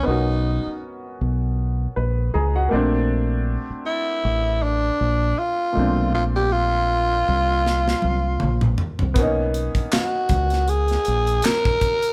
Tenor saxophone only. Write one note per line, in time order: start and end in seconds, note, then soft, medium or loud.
0.05 0.81 D#4 medium
3.86 4.64 E4 medium
4.63 5.40 D4 medium
5.39 6.13 F4 medium
6.15 6.24 F4 medium
6.36 6.54 G4 loud
6.52 8.79 F4 loud
9.93 10.71 F#4 medium
10.69 11.46 G#4 medium
11.45 12.13 A#4 loud